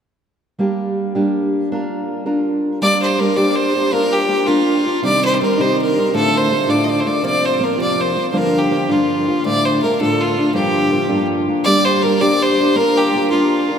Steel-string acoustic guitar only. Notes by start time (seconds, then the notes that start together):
0.59 G3 A#3 D4 G4
1.15 G3 A#3 D4 G4
1.72 A#3 D4 F4 A#4
2.26 A#3 D4 F4 A#4
2.82 G3 A#3 D4 G4
3.18 G3 A#3 D4 G4
3.36 G3 A#3 D4 G4
3.74 A#3 D4 G4
3.92 A#3 D4 F4 A#4
4.29 A#3 D4 F4 A#4
4.47 A#3 D4 F4 A#4
4.85 D4 F4 A#4
5.02 C3 D#3 G3 C4 D#4
5.40 D#3 G3 C4 D#4
5.58 C3 D#3 G3 C4 D#4
5.96 G3 C4 D#4
6.13 D2 A2 D3 A3 D4 F4
6.50 D3 A3 D4 F4
6.67 D2 A2 D3 A3 D4 F4
7.04 D3 A3 D4 F4
7.22 F2 C3 F3 A#3 C4 F4
7.59 F3 A#3 C4 F4
7.77 F2 C3 F3 A#3 C4 F4
8.14 F3 A#3 C4 F4
8.32 G2 D3 F3 A#3 D4 F4
8.70 F3 A#3 D4 F4
8.89 G2 D3 F3 A#3 D4 F4
9.28 F3 A#3 D4 F4
9.45 D2 A2 D3 A3 D4 F4
9.83 D3 A3 D4 F4
10.00 D2 A2 D3 A3 D4 F4
10.37 D3 A3 D4 F4
10.54 G2 D3 F3 A#3 D4 F4
10.91 F3 A#3 D4 F4
11.09 G2 D3 F3 A#3 D4 F4
11.48 F3 A#3 D4 F4
11.65 G3 A#3 D4 G4
12.03 G3 A#3 D4 G4
12.21 G3 A#3 D4 G4
12.59 A#3 D4 G4
12.76 A#3 D4 F4 A#4
13.14 A#3 D4 F4 A#4
13.32 A#3 D4 F4 A#4
13.69 D4 F4 A#4